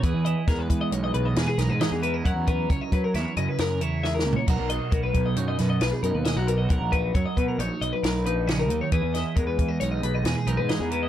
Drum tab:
CC |------------------------------|------------------------------|x-----------------------------|------------------------------|
HH |x--x--x--x--x--x--x--x--x--x--|x--x--x--x--x--x--x--x--------|x--x--x--x--x--x--x--x--x--x--|x--x--x--x--x--x--x--x--x--x--|
SD |------o-----------o--o--o-----|------------o-----o-----o-o---|---------------o--o-----o-----|------------------o-----o-----|
FT |------------------------------|----------------------------o-|------------------------------|------------------------------|
BD |o-----o--o--------------------|o--o--o--o--------------------|o-----o--o--------------------|o--o--o--o--------------------|

CC |------------------------------|
HH |x--x--x--x--x--x--x--x--x--x--|
SD |---o--------------o-----o-----|
FT |------------------------------|
BD |o-----o--o--------------------|